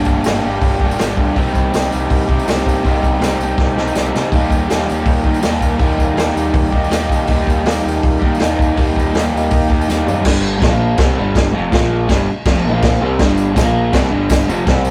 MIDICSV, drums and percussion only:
0, 0, Header, 1, 2, 480
1, 0, Start_track
1, 0, Key_signature, -2, "minor"
1, 0, Tempo, 369686
1, 1768, Time_signature, 4, 2, 24, 8
1, 19353, End_track
2, 0, Start_track
2, 0, Title_t, "Drums"
2, 65, Note_on_c, 9, 54, 70
2, 81, Note_on_c, 9, 36, 89
2, 195, Note_off_c, 9, 54, 0
2, 211, Note_off_c, 9, 36, 0
2, 313, Note_on_c, 9, 54, 104
2, 326, Note_on_c, 9, 46, 53
2, 339, Note_on_c, 9, 38, 112
2, 443, Note_off_c, 9, 54, 0
2, 456, Note_off_c, 9, 46, 0
2, 469, Note_off_c, 9, 38, 0
2, 799, Note_on_c, 9, 36, 107
2, 799, Note_on_c, 9, 46, 58
2, 928, Note_off_c, 9, 36, 0
2, 929, Note_off_c, 9, 46, 0
2, 933, Note_on_c, 9, 54, 26
2, 1036, Note_on_c, 9, 36, 83
2, 1063, Note_off_c, 9, 54, 0
2, 1165, Note_off_c, 9, 36, 0
2, 1185, Note_on_c, 9, 54, 79
2, 1279, Note_on_c, 9, 46, 58
2, 1292, Note_on_c, 9, 38, 111
2, 1311, Note_off_c, 9, 54, 0
2, 1311, Note_on_c, 9, 54, 104
2, 1409, Note_off_c, 9, 46, 0
2, 1422, Note_off_c, 9, 38, 0
2, 1441, Note_off_c, 9, 54, 0
2, 1523, Note_on_c, 9, 36, 85
2, 1653, Note_off_c, 9, 36, 0
2, 1769, Note_on_c, 9, 36, 102
2, 1770, Note_on_c, 9, 46, 51
2, 1792, Note_on_c, 9, 54, 34
2, 1899, Note_off_c, 9, 36, 0
2, 1900, Note_off_c, 9, 46, 0
2, 1905, Note_off_c, 9, 54, 0
2, 1905, Note_on_c, 9, 54, 32
2, 2007, Note_on_c, 9, 36, 86
2, 2013, Note_off_c, 9, 54, 0
2, 2013, Note_on_c, 9, 54, 79
2, 2136, Note_off_c, 9, 36, 0
2, 2143, Note_off_c, 9, 54, 0
2, 2255, Note_on_c, 9, 54, 93
2, 2259, Note_on_c, 9, 46, 54
2, 2272, Note_on_c, 9, 38, 109
2, 2385, Note_off_c, 9, 54, 0
2, 2389, Note_off_c, 9, 46, 0
2, 2402, Note_off_c, 9, 38, 0
2, 2495, Note_on_c, 9, 54, 81
2, 2625, Note_off_c, 9, 54, 0
2, 2731, Note_on_c, 9, 36, 109
2, 2732, Note_on_c, 9, 46, 59
2, 2861, Note_off_c, 9, 36, 0
2, 2862, Note_off_c, 9, 46, 0
2, 2877, Note_on_c, 9, 54, 28
2, 2970, Note_on_c, 9, 36, 97
2, 3006, Note_off_c, 9, 54, 0
2, 3100, Note_off_c, 9, 36, 0
2, 3108, Note_on_c, 9, 54, 64
2, 3217, Note_off_c, 9, 54, 0
2, 3217, Note_on_c, 9, 46, 57
2, 3217, Note_on_c, 9, 54, 87
2, 3230, Note_on_c, 9, 38, 112
2, 3346, Note_off_c, 9, 54, 0
2, 3347, Note_off_c, 9, 46, 0
2, 3360, Note_off_c, 9, 38, 0
2, 3455, Note_on_c, 9, 36, 88
2, 3487, Note_on_c, 9, 54, 70
2, 3585, Note_off_c, 9, 36, 0
2, 3617, Note_off_c, 9, 54, 0
2, 3695, Note_on_c, 9, 36, 91
2, 3702, Note_on_c, 9, 46, 52
2, 3710, Note_on_c, 9, 54, 28
2, 3825, Note_off_c, 9, 36, 0
2, 3832, Note_off_c, 9, 46, 0
2, 3838, Note_off_c, 9, 54, 0
2, 3838, Note_on_c, 9, 54, 28
2, 3935, Note_on_c, 9, 36, 81
2, 3949, Note_off_c, 9, 54, 0
2, 3949, Note_on_c, 9, 54, 63
2, 4064, Note_off_c, 9, 36, 0
2, 4078, Note_off_c, 9, 54, 0
2, 4090, Note_on_c, 9, 54, 26
2, 4169, Note_on_c, 9, 46, 54
2, 4182, Note_on_c, 9, 38, 97
2, 4201, Note_off_c, 9, 54, 0
2, 4201, Note_on_c, 9, 54, 96
2, 4299, Note_off_c, 9, 46, 0
2, 4312, Note_off_c, 9, 38, 0
2, 4331, Note_off_c, 9, 54, 0
2, 4424, Note_on_c, 9, 54, 78
2, 4550, Note_off_c, 9, 54, 0
2, 4550, Note_on_c, 9, 54, 28
2, 4648, Note_on_c, 9, 36, 127
2, 4658, Note_on_c, 9, 38, 60
2, 4673, Note_off_c, 9, 54, 0
2, 4673, Note_on_c, 9, 54, 22
2, 4778, Note_off_c, 9, 36, 0
2, 4788, Note_off_c, 9, 38, 0
2, 4791, Note_off_c, 9, 54, 0
2, 4791, Note_on_c, 9, 54, 26
2, 4898, Note_on_c, 9, 38, 66
2, 4921, Note_off_c, 9, 54, 0
2, 4926, Note_on_c, 9, 54, 24
2, 5028, Note_off_c, 9, 38, 0
2, 5029, Note_off_c, 9, 54, 0
2, 5029, Note_on_c, 9, 54, 70
2, 5133, Note_off_c, 9, 54, 0
2, 5133, Note_on_c, 9, 54, 96
2, 5138, Note_on_c, 9, 38, 89
2, 5263, Note_off_c, 9, 54, 0
2, 5268, Note_off_c, 9, 38, 0
2, 5279, Note_on_c, 9, 54, 28
2, 5392, Note_on_c, 9, 38, 87
2, 5395, Note_off_c, 9, 54, 0
2, 5395, Note_on_c, 9, 54, 71
2, 5522, Note_off_c, 9, 38, 0
2, 5523, Note_off_c, 9, 54, 0
2, 5523, Note_on_c, 9, 54, 30
2, 5609, Note_on_c, 9, 36, 106
2, 5612, Note_on_c, 9, 46, 58
2, 5623, Note_off_c, 9, 54, 0
2, 5623, Note_on_c, 9, 54, 31
2, 5739, Note_off_c, 9, 36, 0
2, 5741, Note_off_c, 9, 46, 0
2, 5753, Note_off_c, 9, 54, 0
2, 5768, Note_on_c, 9, 54, 31
2, 5849, Note_on_c, 9, 36, 86
2, 5866, Note_off_c, 9, 54, 0
2, 5866, Note_on_c, 9, 54, 71
2, 5979, Note_off_c, 9, 36, 0
2, 5996, Note_off_c, 9, 54, 0
2, 6097, Note_on_c, 9, 46, 49
2, 6110, Note_on_c, 9, 38, 100
2, 6114, Note_on_c, 9, 54, 99
2, 6227, Note_off_c, 9, 46, 0
2, 6240, Note_off_c, 9, 38, 0
2, 6244, Note_off_c, 9, 54, 0
2, 6356, Note_on_c, 9, 54, 81
2, 6486, Note_off_c, 9, 54, 0
2, 6567, Note_on_c, 9, 36, 123
2, 6568, Note_on_c, 9, 46, 61
2, 6697, Note_off_c, 9, 36, 0
2, 6698, Note_off_c, 9, 46, 0
2, 6710, Note_on_c, 9, 54, 30
2, 6805, Note_on_c, 9, 36, 86
2, 6840, Note_off_c, 9, 54, 0
2, 6935, Note_off_c, 9, 36, 0
2, 6935, Note_on_c, 9, 54, 74
2, 7041, Note_on_c, 9, 46, 61
2, 7045, Note_off_c, 9, 54, 0
2, 7045, Note_on_c, 9, 54, 107
2, 7054, Note_on_c, 9, 38, 119
2, 7170, Note_off_c, 9, 46, 0
2, 7175, Note_off_c, 9, 54, 0
2, 7183, Note_off_c, 9, 38, 0
2, 7281, Note_on_c, 9, 36, 86
2, 7298, Note_on_c, 9, 54, 85
2, 7411, Note_off_c, 9, 36, 0
2, 7428, Note_off_c, 9, 54, 0
2, 7524, Note_on_c, 9, 36, 105
2, 7525, Note_on_c, 9, 46, 50
2, 7544, Note_on_c, 9, 54, 33
2, 7654, Note_off_c, 9, 36, 0
2, 7655, Note_off_c, 9, 46, 0
2, 7674, Note_off_c, 9, 54, 0
2, 7674, Note_on_c, 9, 54, 31
2, 7765, Note_on_c, 9, 36, 78
2, 7786, Note_off_c, 9, 54, 0
2, 7786, Note_on_c, 9, 54, 83
2, 7895, Note_off_c, 9, 36, 0
2, 7916, Note_off_c, 9, 54, 0
2, 8012, Note_on_c, 9, 46, 55
2, 8025, Note_on_c, 9, 38, 110
2, 8043, Note_on_c, 9, 54, 94
2, 8141, Note_off_c, 9, 46, 0
2, 8154, Note_off_c, 9, 38, 0
2, 8173, Note_off_c, 9, 54, 0
2, 8272, Note_on_c, 9, 54, 85
2, 8402, Note_off_c, 9, 54, 0
2, 8490, Note_on_c, 9, 36, 122
2, 8492, Note_on_c, 9, 46, 62
2, 8620, Note_off_c, 9, 36, 0
2, 8622, Note_off_c, 9, 46, 0
2, 8648, Note_on_c, 9, 54, 30
2, 8731, Note_on_c, 9, 36, 90
2, 8778, Note_off_c, 9, 54, 0
2, 8861, Note_off_c, 9, 36, 0
2, 8883, Note_on_c, 9, 54, 71
2, 8968, Note_on_c, 9, 46, 66
2, 8981, Note_on_c, 9, 38, 110
2, 8996, Note_off_c, 9, 54, 0
2, 8996, Note_on_c, 9, 54, 107
2, 9098, Note_off_c, 9, 46, 0
2, 9111, Note_off_c, 9, 38, 0
2, 9125, Note_off_c, 9, 54, 0
2, 9212, Note_on_c, 9, 36, 85
2, 9242, Note_on_c, 9, 54, 74
2, 9342, Note_off_c, 9, 36, 0
2, 9372, Note_off_c, 9, 54, 0
2, 9442, Note_on_c, 9, 46, 57
2, 9457, Note_on_c, 9, 36, 98
2, 9491, Note_on_c, 9, 54, 31
2, 9572, Note_off_c, 9, 46, 0
2, 9586, Note_off_c, 9, 36, 0
2, 9621, Note_off_c, 9, 54, 0
2, 9639, Note_on_c, 9, 54, 28
2, 9698, Note_on_c, 9, 36, 81
2, 9734, Note_off_c, 9, 54, 0
2, 9734, Note_on_c, 9, 54, 74
2, 9828, Note_off_c, 9, 36, 0
2, 9864, Note_off_c, 9, 54, 0
2, 9939, Note_on_c, 9, 46, 61
2, 9952, Note_on_c, 9, 38, 113
2, 10005, Note_on_c, 9, 54, 90
2, 10069, Note_off_c, 9, 46, 0
2, 10082, Note_off_c, 9, 38, 0
2, 10135, Note_off_c, 9, 54, 0
2, 10236, Note_on_c, 9, 54, 72
2, 10366, Note_off_c, 9, 54, 0
2, 10430, Note_on_c, 9, 46, 57
2, 10431, Note_on_c, 9, 36, 117
2, 10559, Note_off_c, 9, 46, 0
2, 10561, Note_off_c, 9, 36, 0
2, 10611, Note_on_c, 9, 54, 25
2, 10671, Note_on_c, 9, 36, 96
2, 10741, Note_off_c, 9, 54, 0
2, 10800, Note_off_c, 9, 36, 0
2, 10838, Note_on_c, 9, 54, 63
2, 10896, Note_on_c, 9, 46, 54
2, 10909, Note_on_c, 9, 38, 106
2, 10951, Note_off_c, 9, 54, 0
2, 10951, Note_on_c, 9, 54, 98
2, 11026, Note_off_c, 9, 46, 0
2, 11039, Note_off_c, 9, 38, 0
2, 11081, Note_off_c, 9, 54, 0
2, 11153, Note_on_c, 9, 36, 93
2, 11190, Note_on_c, 9, 54, 72
2, 11283, Note_off_c, 9, 36, 0
2, 11320, Note_off_c, 9, 54, 0
2, 11385, Note_on_c, 9, 46, 51
2, 11394, Note_on_c, 9, 36, 94
2, 11445, Note_on_c, 9, 54, 29
2, 11515, Note_off_c, 9, 46, 0
2, 11524, Note_off_c, 9, 36, 0
2, 11571, Note_off_c, 9, 54, 0
2, 11571, Note_on_c, 9, 54, 27
2, 11637, Note_on_c, 9, 36, 77
2, 11677, Note_off_c, 9, 54, 0
2, 11677, Note_on_c, 9, 54, 64
2, 11767, Note_off_c, 9, 36, 0
2, 11806, Note_off_c, 9, 54, 0
2, 11818, Note_on_c, 9, 54, 25
2, 11872, Note_on_c, 9, 46, 56
2, 11885, Note_on_c, 9, 38, 108
2, 11931, Note_off_c, 9, 54, 0
2, 11931, Note_on_c, 9, 54, 89
2, 12002, Note_off_c, 9, 46, 0
2, 12015, Note_off_c, 9, 38, 0
2, 12061, Note_off_c, 9, 54, 0
2, 12168, Note_on_c, 9, 54, 71
2, 12298, Note_off_c, 9, 54, 0
2, 12299, Note_on_c, 9, 54, 27
2, 12342, Note_on_c, 9, 46, 66
2, 12353, Note_on_c, 9, 36, 116
2, 12410, Note_off_c, 9, 54, 0
2, 12410, Note_on_c, 9, 54, 24
2, 12472, Note_off_c, 9, 46, 0
2, 12483, Note_off_c, 9, 36, 0
2, 12512, Note_off_c, 9, 54, 0
2, 12512, Note_on_c, 9, 54, 26
2, 12592, Note_on_c, 9, 36, 93
2, 12623, Note_off_c, 9, 54, 0
2, 12623, Note_on_c, 9, 54, 26
2, 12722, Note_off_c, 9, 36, 0
2, 12741, Note_off_c, 9, 54, 0
2, 12741, Note_on_c, 9, 54, 76
2, 12846, Note_on_c, 9, 38, 60
2, 12849, Note_off_c, 9, 54, 0
2, 12849, Note_on_c, 9, 54, 100
2, 12976, Note_off_c, 9, 38, 0
2, 12979, Note_off_c, 9, 54, 0
2, 13070, Note_on_c, 9, 43, 89
2, 13090, Note_on_c, 9, 54, 78
2, 13200, Note_off_c, 9, 43, 0
2, 13200, Note_off_c, 9, 54, 0
2, 13200, Note_on_c, 9, 54, 28
2, 13305, Note_on_c, 9, 49, 125
2, 13305, Note_on_c, 9, 57, 65
2, 13309, Note_on_c, 9, 36, 106
2, 13318, Note_on_c, 9, 38, 104
2, 13330, Note_off_c, 9, 54, 0
2, 13435, Note_off_c, 9, 49, 0
2, 13435, Note_off_c, 9, 57, 0
2, 13439, Note_off_c, 9, 36, 0
2, 13448, Note_off_c, 9, 38, 0
2, 13787, Note_on_c, 9, 36, 119
2, 13789, Note_on_c, 9, 57, 61
2, 13802, Note_on_c, 9, 38, 112
2, 13917, Note_off_c, 9, 36, 0
2, 13919, Note_off_c, 9, 57, 0
2, 13932, Note_off_c, 9, 38, 0
2, 14252, Note_on_c, 9, 57, 68
2, 14261, Note_on_c, 9, 36, 119
2, 14265, Note_on_c, 9, 38, 127
2, 14381, Note_off_c, 9, 57, 0
2, 14391, Note_off_c, 9, 36, 0
2, 14394, Note_off_c, 9, 38, 0
2, 14740, Note_on_c, 9, 36, 105
2, 14744, Note_on_c, 9, 57, 55
2, 14757, Note_on_c, 9, 38, 113
2, 14869, Note_off_c, 9, 36, 0
2, 14873, Note_off_c, 9, 57, 0
2, 14886, Note_off_c, 9, 38, 0
2, 15221, Note_on_c, 9, 36, 108
2, 15228, Note_on_c, 9, 57, 58
2, 15241, Note_on_c, 9, 38, 121
2, 15350, Note_off_c, 9, 36, 0
2, 15358, Note_off_c, 9, 57, 0
2, 15371, Note_off_c, 9, 38, 0
2, 15699, Note_on_c, 9, 36, 101
2, 15702, Note_on_c, 9, 57, 64
2, 15715, Note_on_c, 9, 38, 113
2, 15829, Note_off_c, 9, 36, 0
2, 15832, Note_off_c, 9, 57, 0
2, 15844, Note_off_c, 9, 38, 0
2, 16170, Note_on_c, 9, 57, 75
2, 16174, Note_on_c, 9, 36, 118
2, 16183, Note_on_c, 9, 38, 119
2, 16300, Note_off_c, 9, 57, 0
2, 16303, Note_off_c, 9, 36, 0
2, 16313, Note_off_c, 9, 38, 0
2, 16651, Note_on_c, 9, 57, 71
2, 16653, Note_on_c, 9, 36, 113
2, 16664, Note_on_c, 9, 38, 115
2, 16781, Note_off_c, 9, 57, 0
2, 16783, Note_off_c, 9, 36, 0
2, 16794, Note_off_c, 9, 38, 0
2, 17128, Note_on_c, 9, 57, 61
2, 17131, Note_on_c, 9, 36, 109
2, 17141, Note_on_c, 9, 38, 108
2, 17141, Note_on_c, 9, 54, 36
2, 17258, Note_off_c, 9, 57, 0
2, 17261, Note_off_c, 9, 36, 0
2, 17270, Note_off_c, 9, 54, 0
2, 17271, Note_off_c, 9, 38, 0
2, 17366, Note_on_c, 9, 54, 83
2, 17496, Note_off_c, 9, 54, 0
2, 17608, Note_on_c, 9, 36, 109
2, 17611, Note_on_c, 9, 57, 63
2, 17624, Note_on_c, 9, 38, 102
2, 17624, Note_on_c, 9, 54, 102
2, 17737, Note_off_c, 9, 36, 0
2, 17741, Note_off_c, 9, 57, 0
2, 17754, Note_off_c, 9, 38, 0
2, 17754, Note_off_c, 9, 54, 0
2, 18089, Note_on_c, 9, 36, 119
2, 18089, Note_on_c, 9, 57, 65
2, 18102, Note_on_c, 9, 38, 122
2, 18104, Note_on_c, 9, 54, 69
2, 18218, Note_off_c, 9, 57, 0
2, 18219, Note_off_c, 9, 36, 0
2, 18231, Note_off_c, 9, 38, 0
2, 18234, Note_off_c, 9, 54, 0
2, 18562, Note_on_c, 9, 54, 105
2, 18568, Note_on_c, 9, 36, 111
2, 18571, Note_on_c, 9, 57, 61
2, 18584, Note_on_c, 9, 38, 109
2, 18691, Note_off_c, 9, 54, 0
2, 18698, Note_off_c, 9, 36, 0
2, 18701, Note_off_c, 9, 57, 0
2, 18714, Note_off_c, 9, 38, 0
2, 18820, Note_on_c, 9, 54, 80
2, 18950, Note_off_c, 9, 54, 0
2, 19046, Note_on_c, 9, 36, 121
2, 19046, Note_on_c, 9, 57, 54
2, 19059, Note_on_c, 9, 38, 100
2, 19176, Note_off_c, 9, 36, 0
2, 19176, Note_off_c, 9, 57, 0
2, 19189, Note_off_c, 9, 38, 0
2, 19276, Note_on_c, 9, 54, 75
2, 19353, Note_off_c, 9, 54, 0
2, 19353, End_track
0, 0, End_of_file